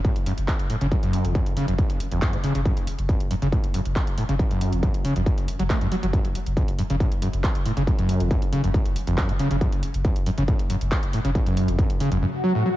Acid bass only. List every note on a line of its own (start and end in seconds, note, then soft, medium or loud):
0.05 0.11 A2 medium
0.26 0.33 F#2 medium
0.70 0.76 A2 medium
0.81 0.87 C#3 loud
0.91 0.95 F#2 loud
1.03 1.26 F#2 loud
1.25 1.33 F2 medium
1.35 1.41 F#2 medium
1.57 1.66 C#3 loud
1.68 1.74 F#2 medium
1.78 1.82 F#2 loud
2.12 2.20 F2 medium
2.22 2.35 F#2 medium
2.33 2.37 A2 loud
2.44 2.53 C#3 loud
2.55 2.61 C#3 medium
2.66 2.72 F#2 medium
3.09 3.15 F#1 loud
3.31 3.34 F#2 loud
3.42 3.48 C#3 loud
3.52 3.59 A2 medium
3.74 3.80 F#2 medium
4.18 4.24 A2 medium
4.29 4.35 C#3 loud
4.39 4.43 F#2 loud
4.51 4.74 F#2 loud
4.72 4.81 F2 medium
4.83 4.89 F#2 medium
5.05 5.14 C#3 loud
5.16 5.22 F#2 medium
5.26 5.30 F#2 loud
5.59 5.63 F#3 loud
5.70 5.79 A3 medium
5.81 5.87 F#2 loud
5.92 5.95 F#3 loud
6.03 6.06 F#3 medium
6.13 6.20 F#2 medium
6.57 6.63 F#1 loud
6.79 6.82 F#2 loud
6.90 6.96 C#3 loud
7.00 7.07 A2 medium
7.22 7.28 F#2 medium
7.66 7.72 A2 medium
7.77 7.83 C#3 loud
7.87 7.91 F#2 loud
7.99 8.22 F#2 loud
8.21 8.29 F2 medium
8.31 8.37 F#2 medium
8.53 8.62 C#3 loud
8.64 8.70 F#2 medium
8.74 8.78 F#2 loud
9.07 9.16 F2 medium
9.18 9.30 F#2 medium
9.29 9.32 A2 loud
9.39 9.49 C#3 loud
9.51 9.56 C#3 medium
9.61 9.67 F#2 medium
10.05 10.11 F#1 loud
10.26 10.30 F#2 loud
10.38 10.43 C#3 loud
10.48 10.54 A2 medium
10.70 10.76 F#2 medium
11.13 11.20 A2 medium
11.25 11.30 C#3 loud
11.35 11.39 F#2 loud
11.46 11.70 F#2 loud
11.68 11.77 F2 medium
11.79 11.85 F#2 medium
12.00 12.10 C#3 loud
12.12 12.17 F#2 medium
12.22 12.26 F#2 loud
12.44 12.53 F#3 loud
12.55 12.64 A2 loud
12.66 12.69 F#3 medium